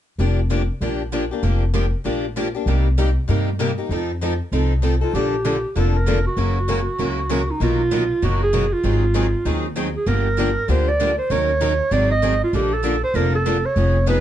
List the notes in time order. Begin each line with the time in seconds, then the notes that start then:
0.18 F1 F3 A#3 D4 G4
0.50 F3 A#3 D4 G4
0.81 A#1 F3 A#3 D4 G4
1.12 F3 A#3 D4 G4
1.31 A#3 D4 G4
1.43 F1 F3 A#3 D4 G4
1.74 F3 A#3 D4 G4
2.04 A#1 F3 A#3 D4 G4
2.36 F3 A#3 D4 G4
2.55 A#3 D4 G4
2.66 C2 C3 G3 A#3 D#4 G4
2.98 C3 G3 A#3 D#4 G4
3.28 G2 C3 G3 A#3 D#4 G4
3.59 C3 G3 A#3 D#4 G4
3.78 A#3 D#4 G4
3.89 F2 F3 C4 D#4 A4
4.21 F3 C4 D#4 A4
4.52 C2 F3 C4 D#4 A4
4.82 F3 C4 D#4 A4
5.01 C4 D#4 F4 A4
5.13 A#1 D3 F3 A#3 D4 G4 A4
5.45 D3 F3 A#3 D4 A4
5.76 F1 D3 F3 A#3 D4 A4
5.96 A#4
6.07 D3 F3 A#3 D4 A4
6.26 F#4
6.37 F#1 C#3 E3 F#3 A#3 C#4 E4 F#4 A#4
6.68 C#3 E3 F#3 A#3 C#4 E4 F#4 A#4
6.98 C#2 C#3 E3 F#3 A#3 C#4 E4 F#4 A#4
7.29 C#3 E3 F#3 A#3 C#4 E4 F#4 A#4
7.51 D#4
7.60 B1 B2 D#3 F#3 A#3 B3 D#4 F4 F#4 A#4
7.91 B2 D#3 F#3 A#3 B3 D#4 F#4 A#4
8.22 F#1 B2 D#3 F#3 A#3 B3 D#4 F#4 A#4
8.43 G#4
8.53 B2 D#3 F#3 A#3 B3 D#4 F#4 A#4
8.73 F4
8.83 G#1 D#3 F#3 C4 D#4 G#4
9.14 D#3 F#3 C4 D#4 G#4
9.45 D#2 D#3 F#3 C4 D#4 G#4
9.76 D#3 F#3 C4 D#4 G#4
9.96 G#4
10.06 G1 D3 F3 A#3 D4 G4 A#4
10.38 D3 F3 A#3 D4 G4
10.68 D2 D3 F3 A#3 D4 G4 C5
10.89 D5
11.00 D3 F3 A#3 D4 G4
11.18 C5
11.30 D#2 D#3 F#3 C#4 D#4 A#4 C#5
11.61 D#3 F#3 C#4 D#4 A#4
11.91 G#1 D#3 F#3 C4 D#4 G#4 D5
12.11 D#5
12.22 D#3 F#3 C4 D#4 G#4
12.43 F4
12.53 A#1 D3 F3 A#3 D4 G4 A4
12.73 A4
12.84 D3 F3 A#3 D4 A4
13.04 C5
13.14 F1 D3 F3 A#3 D4 A4 A#4
13.35 A4
13.46 D3 F3 A#3 D4 A4
13.65 C#5
13.76 F1 F3 B3 D#4 G#4
14.07 F3 B3 D#4 G#4 B4